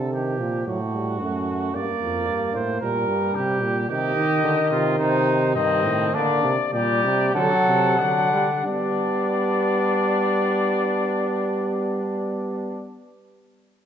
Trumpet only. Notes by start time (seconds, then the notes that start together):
0.13 G4
0.68 F#4
1.75 D5
2.55 C5
2.81 A#4
3.35 G4
3.89 G4
4.71 F4
4.99 D#4
5.55 C4
6.14 D4
6.74 G4
7.35 A4
8.00 D4
8.66 D4